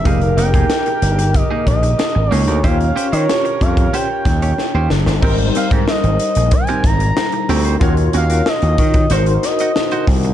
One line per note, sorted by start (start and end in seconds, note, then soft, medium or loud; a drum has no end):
0.03 0.32 F1 loud
0.03 0.19 A#3 medium
0.03 2.59 D#4 medium
0.03 2.28 D#4 medium
0.03 0.20 D#4 medium
0.03 2.59 G4 medium
0.03 2.28 G4 medium
0.03 2.60 G#4 medium
0.03 0.20 G#4 medium
0.03 2.28 A#4 medium
0.03 2.60 A#4 medium
0.03 0.36 F5 medium
0.03 kick loud
0.03 closed hi-hat medium
0.21 closed hi-hat soft
0.37 0.63 F1 medium
0.37 0.48 A#3 medium
0.37 0.49 D#4 medium
0.37 0.49 A#4 medium
0.37 1.36 G5 loud
0.37 closed hi-hat medium
0.54 0.65 A#3 soft
0.54 0.65 D#4 medium
0.54 0.65 G#4 medium
0.54 kick medium
0.54 closed hi-hat soft
0.70 muted clean electric guitar stroke soft
0.70 snare loud
0.70 closed hi-hat medium
0.86 muted clean electric guitar stroke soft
0.86 closed hi-hat soft
1.02 1.41 G1 medium
1.02 closed hi-hat medium
1.19 muted clean electric guitar stroke soft
1.19 closed hi-hat medium
1.34 1.67 D#5 medium
1.34 muted clean electric guitar stroke soft
1.34 kick loud
1.34 closed hi-hat medium
1.51 1.65 A#3 medium
1.51 1.65 D#4 medium
1.51 1.64 G#4 medium
1.67 1.93 A#1 medium
1.67 2.33 D#5 loud
1.67 muted clean electric guitar stroke soft
1.67 kick medium
1.67 closed hi-hat medium
1.83 muted clean electric guitar stroke soft
1.83 closed hi-hat medium
1.99 muted clean electric guitar stroke soft
1.99 snare loud
1.99 closed hi-hat medium
2.15 2.29 G#1 medium
2.15 muted clean electric guitar stroke soft
2.31 2.45 C#2 medium
2.31 2.45 A#3 medium
2.31 2.45 D#4 medium
2.31 2.46 G#4 medium
2.31 2.66 C#5 loud
2.31 snare soft
2.31 open hi-hat medium
2.47 2.61 D2 medium
2.47 2.59 A#3 soft
2.47 2.59 D#4 medium
2.47 2.58 A#4 medium
2.47 closed hi-hat soft
2.63 2.90 D#2 loud
2.63 5.18 C#4 medium
2.63 2.77 C#4 medium
2.63 5.18 F4 medium
2.63 2.78 G4 medium
2.63 5.19 G4 medium
2.63 4.87 G4 medium
2.63 4.87 A#4 medium
2.63 2.78 C5 loud
2.63 4.87 C#5 medium
2.63 5.19 C#5 medium
2.63 3.14 F5 medium
2.63 kick medium
2.63 closed hi-hat medium
2.81 closed hi-hat soft
2.96 3.07 C#4 medium
2.96 3.07 G4 medium
2.96 3.07 C5 medium
2.96 closed hi-hat medium
3.12 3.26 D#3 loud
3.12 3.24 C#4 medium
3.12 3.23 G4 medium
3.12 3.23 C5 medium
3.12 3.64 C#5 medium
3.12 closed hi-hat medium
3.28 muted clean electric guitar stroke soft
3.28 snare loud
3.28 closed hi-hat medium
3.45 muted clean electric guitar stroke soft
3.45 closed hi-hat soft
3.61 3.87 F2 medium
3.61 3.96 F5 medium
3.61 kick medium
3.61 closed hi-hat medium
3.77 muted clean electric guitar stroke soft
3.77 kick loud
3.77 closed hi-hat medium
3.93 4.07 C#4 medium
3.93 4.07 G4 loud
3.93 4.08 C5 loud
3.93 4.91 G5 medium
3.93 closed hi-hat medium
4.10 muted clean electric guitar stroke soft
4.25 4.52 D#2 medium
4.25 muted clean electric guitar stroke soft
4.25 kick medium
4.25 snare soft
4.25 closed hi-hat medium
4.42 4.53 C#4 soft
4.42 4.53 G4 medium
4.42 4.53 C#5 medium
4.42 closed hi-hat medium
4.58 muted clean electric guitar stroke soft
4.58 snare medium
4.74 4.87 D#2 loud
4.74 4.89 C#4 medium
4.74 4.89 G4 medium
4.74 4.88 C5 medium
4.90 5.03 F#1 loud
4.90 muted clean electric guitar stroke soft
4.90 snare medium
5.06 5.20 G1 medium
5.06 muted clean electric guitar stroke medium
5.06 snare medium
5.21 5.49 G#1 loud
5.21 7.77 G3 medium
5.21 5.37 C4 medium
5.21 7.77 D#4 medium
5.21 5.37 G4 medium
5.21 7.78 A#4 medium
5.21 5.37 A#4 medium
5.21 7.78 C5 medium
5.21 kick loud
5.21 crash medium
5.38 muted clean electric guitar stroke soft
5.38 closed hi-hat soft
5.55 5.66 C4 medium
5.55 5.67 G4 medium
5.55 5.67 C5 medium
5.55 5.71 F5 medium
5.55 closed hi-hat medium
5.71 5.84 G#2 loud
5.71 5.83 C4 soft
5.71 5.83 G4 medium
5.71 5.82 A#4 medium
5.71 kick medium
5.71 closed hi-hat soft
5.88 6.55 D#5 medium
5.88 muted clean electric guitar stroke soft
5.88 snare loud
6.03 6.17 G#1 medium
6.03 muted clean electric guitar stroke soft
6.03 closed hi-hat soft
6.19 closed hi-hat medium
6.35 6.49 A#1 medium
6.35 muted clean electric guitar stroke soft
6.35 closed hi-hat medium
6.51 6.87 G#5 loud
6.51 muted clean electric guitar stroke soft
6.51 kick loud
6.51 closed hi-hat loud
6.67 6.83 C4 medium
6.67 6.82 G4 medium
6.67 6.82 A#4 medium
6.67 closed hi-hat soft
6.84 7.10 G#1 loud
6.84 7.50 A#5 loud
6.84 muted clean electric guitar stroke soft
6.84 kick medium
6.84 snare soft
6.84 closed hi-hat medium
7.00 muted clean electric guitar stroke soft
7.00 closed hi-hat medium
7.17 muted clean electric guitar stroke soft
7.17 snare loud
7.32 muted clean electric guitar stroke soft
7.32 closed hi-hat soft
7.49 7.75 D2 medium
7.49 7.63 C4 medium
7.49 7.63 G4 medium
7.49 7.63 A#4 medium
7.49 snare soft
7.49 open hi-hat medium
7.65 7.76 C4 medium
7.65 7.76 G4 medium
7.65 7.76 C5 medium
7.65 closed hi-hat medium
7.79 8.07 D#2 loud
7.79 7.95 C#4 medium
7.79 9.07 F4 medium
7.79 9.08 F#4 medium
7.79 7.96 F#4 medium
7.79 9.08 A#4 medium
7.79 7.96 A#4 loud
7.79 9.09 C#5 medium
7.79 kick loud
7.79 closed hi-hat medium
7.97 muted clean electric guitar stroke soft
7.97 closed hi-hat soft
8.13 8.40 D#2 medium
8.13 8.25 C#4 medium
8.13 8.25 F#4 medium
8.13 8.25 A#4 medium
8.13 8.49 F5 loud
8.13 closed hi-hat medium
8.30 8.41 C#4 soft
8.30 8.41 F#4 medium
8.30 8.41 A#4 medium
8.30 closed hi-hat medium
8.46 9.13 D#5 loud
8.46 muted clean electric guitar stroke soft
8.46 snare loud
8.62 8.75 D#2 medium
8.62 muted clean electric guitar stroke soft
8.62 closed hi-hat soft
8.78 9.05 D#3 loud
8.78 kick medium
8.78 closed hi-hat medium
8.94 muted clean electric guitar stroke soft
8.94 kick loud
8.94 closed hi-hat medium
9.10 9.37 G#1 loud
9.10 10.34 D#4 medium
9.10 9.25 D#4 medium
9.10 10.34 F#4 medium
9.10 9.25 F#4 medium
9.10 10.34 A#4 medium
9.10 9.46 C5 medium
9.10 9.25 C5 medium
9.10 10.34 C5 medium
9.10 closed hi-hat medium
9.26 closed hi-hat soft
9.43 10.09 D#5 medium
9.43 muted clean electric guitar stroke soft
9.43 snare soft
9.43 closed hi-hat medium
9.59 9.71 D#4 medium
9.59 9.71 F#4 medium
9.59 9.71 D#5 medium
9.59 closed hi-hat medium
9.76 muted clean electric guitar stroke soft
9.76 snare loud
9.91 10.06 D#4 medium
9.91 10.06 F#4 medium
9.91 10.06 C5 medium
9.91 closed hi-hat soft
10.07 10.34 C2 medium
10.07 kick medium
10.07 snare soft
10.07 open hi-hat medium
10.23 muted clean electric guitar stroke soft
10.23 closed hi-hat soft